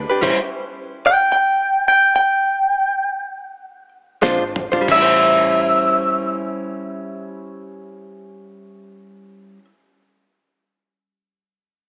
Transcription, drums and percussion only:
0.23 kick loud
0.23 closed hi-hat medium
0.23 crash medium
4.23 kick medium
4.23 snare medium
4.56 mid tom medium
4.73 floor tom medium
4.88 kick loud
4.88 crash medium

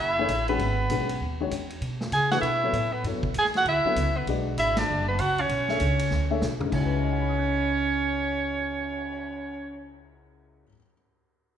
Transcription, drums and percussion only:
0.28 hi-hat pedal soft
0.28 ride medium
0.48 ride soft
0.59 ride medium
0.90 hi-hat pedal medium
0.90 ride medium
1.09 ride medium
1.51 hi-hat pedal medium
1.51 ride medium
1.70 ride soft
1.82 ride medium
2.01 snare medium
2.12 hi-hat pedal medium
2.12 ride medium
2.31 snare medium
2.31 ride soft
2.43 ride medium
2.73 hi-hat pedal medium
2.73 ride medium
3.04 ride medium
3.23 kick medium
3.34 hi-hat pedal medium
3.34 ride medium
3.45 snare soft
3.54 snare soft
3.54 ride soft
3.66 ride medium
3.96 hi-hat pedal medium
3.96 ride medium
4.27 ride medium
4.58 hi-hat pedal medium
4.58 ride medium
4.76 snare medium
4.76 ride medium
5.19 hi-hat pedal medium
5.19 ride medium
5.38 ride soft
5.49 ride medium
5.68 snare soft
5.80 hi-hat pedal medium
5.80 ride medium
5.99 ride medium
6.10 snare soft
6.41 snare medium
6.41 hi-hat pedal medium
6.61 floor tom medium
6.72 kick medium
6.72 crash medium
6.92 cymbal swell soft

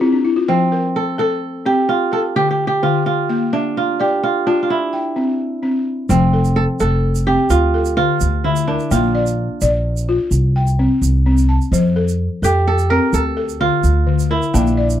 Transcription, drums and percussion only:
6.10 shaker medium
6.45 shaker soft
6.80 shaker medium
7.15 shaker soft
7.50 shaker medium
7.85 shaker soft
8.21 shaker medium
8.56 shaker soft
8.79 shaker soft
8.91 shaker medium
9.26 shaker soft
9.61 shaker medium
9.97 shaker soft
10.32 shaker medium
10.67 shaker soft
11.03 shaker medium
11.38 shaker soft
11.61 shaker soft
11.73 shaker medium
12.08 shaker medium
12.44 shaker medium
12.79 shaker medium
13.13 shaker medium
13.49 shaker medium
13.84 shaker medium
14.19 shaker medium
14.43 shaker soft
14.55 shaker medium
14.67 shaker soft
14.90 shaker soft

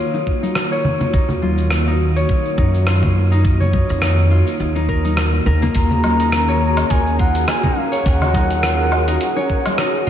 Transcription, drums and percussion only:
0.14 high bongo medium
0.14 cabasa soft
0.27 kick medium
0.43 high conga medium
0.43 cabasa medium
0.55 cross-stick loud
0.55 cabasa medium
0.72 cabasa soft
0.84 low conga medium
1.01 high bongo medium
1.01 low conga medium
1.01 cabasa medium
1.13 kick loud
1.13 cabasa medium
1.29 low conga loud
1.29 cabasa soft
1.42 high conga medium
1.58 cabasa medium
1.71 cross-stick loud
1.71 cabasa medium
1.87 cabasa soft
2.16 cabasa medium
2.29 kick loud
2.29 cabasa medium
2.45 cabasa soft
2.58 kick loud
2.74 cabasa medium
2.87 cross-stick loud
2.87 cabasa medium
3.03 kick medium
3.03 low conga medium
3.03 cabasa soft
3.15 high bongo soft
3.32 cabasa medium
3.45 kick loud
3.45 cabasa medium
3.61 low conga medium
3.61 cabasa soft
3.73 kick loud
3.73 high conga medium
3.89 cabasa medium
4.02 cross-stick loud
4.02 cabasa medium
4.19 cabasa soft
4.47 high bongo soft
4.47 cabasa medium
4.60 cabasa medium
4.76 high bongo medium
4.76 cabasa soft
4.89 kick medium
5.05 high conga medium
5.05 cabasa medium
5.17 cross-stick loud
5.17 cabasa medium
5.34 high bongo soft
5.34 cabasa soft
5.46 low conga medium
5.62 high bongo medium
5.62 low conga medium
5.62 cabasa medium
5.75 kick loud
5.75 closed hi-hat soft
5.75 cabasa soft
5.91 low conga medium
5.91 cabasa soft
6.04 closed hi-hat soft
6.04 high conga medium
6.04 low woodblock medium
6.20 closed hi-hat soft
6.20 cabasa medium
6.32 cross-stick medium
6.32 closed hi-hat medium
6.32 cabasa medium
6.49 cabasa soft
6.77 closed hi-hat soft
6.77 cabasa medium
6.77 low woodblock medium
6.90 kick loud
6.90 closed hi-hat soft
6.90 cabasa soft
7.07 cabasa soft
7.19 kick loud
7.35 closed hi-hat soft
7.35 cabasa medium
7.48 cross-stick medium
7.48 closed hi-hat medium
7.48 cabasa medium
7.48 low woodblock medium
7.64 kick medium
7.64 low conga medium
7.64 cabasa soft
7.77 high bongo soft
7.93 closed hi-hat soft
7.93 cabasa medium
8.06 kick loud
8.06 closed hi-hat medium
8.06 cabasa soft
8.22 low conga medium
8.22 cabasa soft
8.22 low woodblock medium
8.33 kick medium
8.33 closed hi-hat soft
8.33 high conga medium
8.51 closed hi-hat soft
8.51 cabasa medium
8.63 cross-stick loud
8.63 closed hi-hat medium
8.63 cabasa medium
8.80 cabasa soft
8.92 low woodblock medium
9.08 closed hi-hat soft
9.08 cabasa medium
9.21 closed hi-hat medium
9.21 cabasa soft
9.36 high bongo medium
9.36 cabasa soft
9.50 kick medium
9.66 closed hi-hat soft
9.66 high conga medium
9.66 cabasa medium
9.66 low woodblock medium
9.78 cross-stick medium
9.78 closed hi-hat medium
9.78 cabasa soft
9.95 cabasa soft

